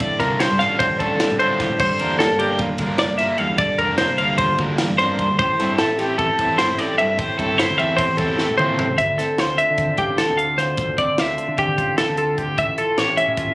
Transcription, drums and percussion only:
0.00 kick loud
0.00 ride loud
0.20 kick medium
0.20 snare soft
0.20 ride medium
0.40 snare loud
0.40 ride loud
0.60 snare soft
0.60 ride medium
0.80 kick loud
0.80 ride medium
1.00 kick medium
1.00 ride medium
1.20 snare loud
1.20 ride loud
1.40 ride medium
1.60 kick medium
1.60 snare soft
1.60 ride medium
1.79 kick loud
1.79 crash loud
1.99 ride medium
2.20 snare loud
2.20 ride loud
2.39 ride medium
2.59 kick loud
2.59 ride medium
2.78 kick medium
2.78 ride medium
2.98 snare loud
2.98 ride loud
3.19 snare soft
3.19 ride medium
3.38 ride medium
3.58 kick loud
3.58 ride medium
3.79 kick medium
3.79 ride medium
3.98 snare loud
3.98 ride medium
4.18 ride medium
4.38 kick loud
4.38 ride loud
4.58 kick medium
4.58 ride medium
4.78 snare loud
4.78 ride loud
4.99 snare soft
4.99 ride medium
5.19 kick medium
5.19 ride medium
5.39 kick loud
5.39 ride medium
5.60 snare soft
5.60 ride medium
5.78 snare loud
5.78 ride medium
5.99 snare soft
5.99 ride medium
6.19 kick loud
6.19 ride medium
6.39 kick medium
6.39 ride medium
6.59 snare loud
6.59 ride loud
6.79 snare soft
6.79 ride medium
6.99 ride medium
7.19 kick loud
7.19 ride medium
7.39 kick medium
7.39 ride medium
7.59 snare loud
7.59 ride loud
7.79 ride medium
7.98 kick loud
7.98 ride loud
8.18 kick medium
8.18 ride medium
8.38 snare medium
8.59 mid tom medium
8.79 floor tom loud
8.98 kick medium
8.98 closed hi-hat medium
9.19 snare soft
9.19 closed hi-hat medium
9.38 snare loud
9.38 closed hi-hat medium
9.58 closed hi-hat medium
9.78 kick loud
9.78 closed hi-hat medium
9.98 kick medium
9.98 closed hi-hat medium
10.18 snare loud
10.18 closed hi-hat medium
10.39 closed hi-hat medium
10.59 snare soft
10.59 closed hi-hat medium
10.77 kick loud
10.77 closed hi-hat medium
10.98 kick medium
10.98 closed hi-hat medium
11.18 snare loud
11.18 closed hi-hat medium
11.38 closed hi-hat medium
11.58 kick medium
11.58 closed hi-hat medium
11.78 kick medium
11.78 closed hi-hat medium
11.98 snare loud
11.98 closed hi-hat medium
12.17 closed hi-hat medium
12.38 kick medium
12.38 closed hi-hat soft
12.58 kick medium
12.58 closed hi-hat medium
12.78 closed hi-hat medium
12.98 snare loud
12.98 closed hi-hat medium
13.18 closed hi-hat medium
13.37 kick medium
13.37 closed hi-hat medium

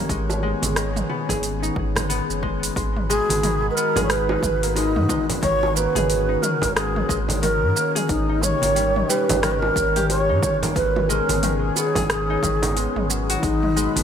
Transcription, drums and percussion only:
0.09 kick loud
0.09 open hi-hat soft
0.09 shaker soft
0.30 high bongo medium
0.30 high conga soft
0.30 shaker soft
0.62 open hi-hat medium
0.62 high conga medium
0.62 shaker medium
0.76 cross-stick medium
0.76 open hi-hat soft
0.76 shaker medium
0.96 mid tom medium
0.96 shaker soft
1.10 high bongo soft
1.29 kick medium
1.29 open hi-hat medium
1.29 low conga medium
1.29 shaker medium
1.43 open hi-hat soft
1.43 shaker medium
1.63 shaker soft
1.76 kick loud
1.96 cross-stick medium
1.96 mid tom medium
1.96 open hi-hat medium
1.96 high conga medium
1.96 low conga medium
1.96 shaker medium
2.10 open hi-hat soft
2.10 shaker medium
2.30 shaker soft
2.43 kick medium
2.63 open hi-hat soft
2.63 shaker medium
2.76 kick loud
2.76 open hi-hat soft
2.76 shaker soft
2.96 mid tom medium
2.96 high conga soft
3.10 shaker medium
3.30 open hi-hat medium
3.30 high conga medium
3.30 shaker soft
3.43 mid tom medium
3.43 open hi-hat soft
3.43 shaker soft
3.77 shaker medium
3.96 mid tom medium
3.96 open hi-hat medium
3.96 low conga medium
3.96 shaker soft
4.10 cross-stick medium
4.10 open hi-hat soft
4.10 shaker soft
4.29 high bongo medium
4.43 kick loud
4.43 mid tom medium
4.43 shaker medium
4.63 open hi-hat medium
4.63 shaker soft
4.76 open hi-hat soft
4.76 high bongo medium
4.76 shaker soft
4.96 mid tom medium
5.09 kick loud
5.09 high bongo soft
5.09 high conga medium
5.09 shaker medium
5.29 open hi-hat medium
5.29 low conga medium
5.29 shaker soft
5.43 kick loud
5.43 mid tom medium
5.43 open hi-hat soft
5.43 shaker soft
5.62 high bongo medium
5.62 high conga soft
5.77 shaker medium
5.95 mid tom medium
5.95 open hi-hat medium
5.95 high conga medium
5.95 shaker soft
6.10 open hi-hat soft
6.10 shaker soft
6.42 mid tom medium
6.42 high bongo soft
6.42 shaker medium
6.62 kick medium
6.62 open hi-hat medium
6.62 low conga medium
6.62 shaker soft
6.77 cross-stick medium
6.77 open hi-hat soft
6.77 shaker soft
6.96 mid tom medium
7.09 kick loud
7.09 shaker medium
7.29 open hi-hat medium
7.29 high conga medium
7.29 low conga medium
7.29 shaker soft
7.43 mid tom medium
7.43 open hi-hat soft
7.43 shaker soft
7.77 shaker medium
7.96 mid tom medium
7.96 open hi-hat medium
7.96 shaker soft
8.09 kick loud
8.09 open hi-hat soft
8.09 shaker soft
8.29 high conga soft
8.43 mid tom medium
8.43 shaker medium
8.62 open hi-hat medium
8.62 high conga medium
8.62 shaker soft
8.76 open hi-hat soft
8.76 shaker soft
8.96 mid tom medium
9.10 shaker medium
9.29 open hi-hat medium
9.29 low conga loud
9.29 shaker soft
9.43 cross-stick medium
9.43 mid tom medium
9.43 open hi-hat soft
9.43 shaker soft
9.62 high bongo medium
9.76 kick loud
9.76 shaker medium
9.96 mid tom medium
9.96 open hi-hat medium
9.96 shaker soft
10.10 open hi-hat soft
10.10 high bongo soft
10.10 shaker soft
10.42 kick loud
10.42 mid tom medium
10.42 high bongo soft
10.42 high conga medium
10.42 shaker medium
10.63 open hi-hat soft
10.63 low conga medium
10.63 shaker soft
10.76 kick loud
10.76 open hi-hat soft
10.76 shaker soft
10.96 mid tom medium
10.96 high bongo medium
10.96 high conga soft
11.10 shaker medium
11.29 open hi-hat medium
11.29 high conga medium
11.29 shaker soft
11.43 mid tom medium
11.43 open hi-hat soft
11.43 shaker soft
11.76 high bongo soft
11.76 shaker medium
11.95 kick medium
11.95 mid tom medium
11.95 open hi-hat medium
11.95 low conga loud
11.95 shaker soft
12.10 cross-stick medium
12.10 open hi-hat soft
12.10 shaker soft
12.43 kick loud
12.43 mid tom medium
12.43 shaker medium
12.63 open hi-hat medium
12.63 high conga medium
12.63 low conga loud
12.63 shaker soft
12.77 open hi-hat soft
12.77 shaker soft
12.96 mid tom medium
13.10 shaker medium
13.30 open hi-hat medium
13.30 shaker soft
13.43 kick loud
13.43 open hi-hat soft
13.43 shaker soft
13.62 mid tom medium
13.62 high conga soft
13.77 shaker medium
13.96 open hi-hat medium
13.96 high conga medium
13.96 shaker soft

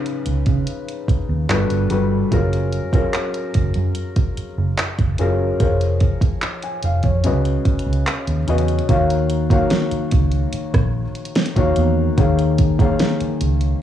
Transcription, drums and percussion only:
0.06 closed hi-hat soft
0.26 closed hi-hat medium
0.46 kick medium
0.46 closed hi-hat soft
0.67 closed hi-hat medium
0.88 closed hi-hat soft
1.08 kick medium
1.08 closed hi-hat medium
1.50 clap loud
1.50 closed hi-hat medium
1.70 closed hi-hat soft
1.90 closed hi-hat medium
2.32 kick loud
2.32 closed hi-hat medium
2.53 closed hi-hat medium
2.73 closed hi-hat soft
2.93 kick loud
2.93 closed hi-hat medium
3.13 clap loud
3.13 closed hi-hat medium
3.34 closed hi-hat soft
3.54 kick medium
3.54 closed hi-hat medium
3.74 closed hi-hat soft
3.95 closed hi-hat medium
4.16 kick medium
4.16 closed hi-hat soft
4.37 closed hi-hat medium
4.78 clap loud
4.78 closed hi-hat medium
4.99 kick medium
4.99 closed hi-hat soft
5.18 closed hi-hat medium
5.60 kick loud
5.60 closed hi-hat medium
5.81 closed hi-hat soft
6.01 kick medium
6.01 closed hi-hat soft
6.21 kick loud
6.21 closed hi-hat medium
6.42 clap loud
6.42 closed hi-hat medium
6.63 closed hi-hat soft
6.83 closed hi-hat medium
7.03 kick medium
7.03 closed hi-hat soft
7.24 closed hi-hat medium
7.45 closed hi-hat soft
7.65 kick medium
7.65 closed hi-hat medium
7.79 closed hi-hat soft
7.93 closed hi-hat soft
8.07 clap loud
8.07 closed hi-hat medium
8.27 closed hi-hat soft
8.48 closed hi-hat medium
8.58 closed hi-hat medium
8.68 closed hi-hat soft
8.79 closed hi-hat soft
8.89 kick loud
8.89 closed hi-hat medium
9.10 closed hi-hat medium
9.30 closed hi-hat medium
9.50 kick loud
9.50 closed hi-hat medium
9.70 snare loud
9.70 closed hi-hat medium
9.92 closed hi-hat medium
10.12 kick medium
10.12 closed hi-hat medium
10.32 closed hi-hat soft
10.53 closed hi-hat medium
10.74 kick loud
10.74 cross-stick loud
10.74 closed hi-hat medium
11.15 closed hi-hat soft
11.25 closed hi-hat soft
11.35 snare loud
11.35 closed hi-hat medium
11.46 closed hi-hat medium
11.56 kick medium
11.56 closed hi-hat medium
11.76 closed hi-hat medium
12.18 kick loud
12.18 closed hi-hat medium
12.39 closed hi-hat medium
12.58 kick medium
12.58 closed hi-hat medium
12.79 kick loud
12.79 closed hi-hat medium
12.99 snare loud
12.99 closed hi-hat medium
13.20 closed hi-hat soft
13.41 closed hi-hat medium
13.61 closed hi-hat soft

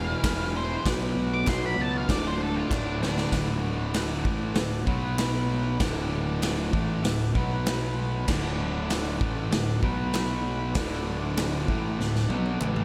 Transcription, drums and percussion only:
0.24 kick loud
0.24 snare loud
0.24 clap loud
0.24 open hi-hat medium
0.85 kick loud
0.85 snare loud
0.85 open hi-hat medium
1.47 kick loud
1.47 snare loud
1.47 clap loud
1.47 open hi-hat medium
2.09 kick loud
2.09 snare loud
2.09 open hi-hat medium
2.71 kick loud
2.71 snare medium
2.71 clap loud
3.03 snare loud
3.18 snare loud
3.32 kick loud
3.32 snare loud
3.32 open hi-hat medium
3.94 snare loud
3.94 clap medium
3.94 open hi-hat medium
4.25 kick loud
4.55 snare loud
4.55 open hi-hat medium
4.87 kick loud
5.18 snare loud
5.18 clap loud
5.18 open hi-hat medium
5.80 kick loud
5.80 snare loud
5.80 open hi-hat medium
6.42 snare loud
6.42 clap loud
6.42 open hi-hat medium
6.73 kick loud
7.04 snare loud
7.04 open hi-hat medium
7.35 kick loud
7.66 snare loud
7.66 clap loud
7.66 open hi-hat medium
8.28 kick loud
8.28 snare loud
8.28 crash loud
8.90 snare loud
8.90 clap loud
8.90 open hi-hat medium
9.21 kick loud
9.52 snare loud
9.52 open hi-hat medium
9.83 kick loud
10.13 snare loud
10.13 clap loud
10.13 open hi-hat medium
10.75 kick loud
10.75 snare loud
10.75 open hi-hat medium
11.37 snare loud
11.37 clap loud
11.37 open hi-hat medium
11.68 kick loud
12.01 snare medium
12.16 snare medium
12.30 high tom medium
12.46 high tom medium
12.61 clap loud
12.61 mid tom loud
12.76 mid tom medium

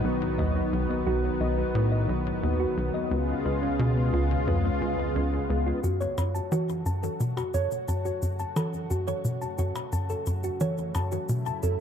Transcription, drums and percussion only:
5.84 shaker medium
6.01 shaker soft
6.18 percussion blips soft
6.18 shaker medium
6.35 shaker medium
6.52 shaker medium
6.69 shaker soft
6.86 shaker medium
7.03 shaker medium
7.20 shaker medium
7.37 percussion blips soft
7.37 shaker soft
7.54 shaker medium
7.71 shaker medium
7.88 shaker medium
8.05 shaker soft
8.22 shaker medium
8.39 shaker medium
8.56 percussion blips soft
8.56 shaker medium
8.73 shaker soft
8.90 shaker medium
9.08 shaker medium
9.25 shaker medium
9.42 shaker soft
9.58 shaker medium
9.76 percussion blips soft
9.76 shaker medium
9.92 shaker medium
10.09 shaker soft
10.26 shaker medium
10.43 shaker medium
10.60 shaker medium
10.78 shaker soft
10.95 percussion blips soft
10.95 shaker medium
11.12 shaker medium
11.29 shaker medium
11.46 shaker soft
11.63 shaker medium

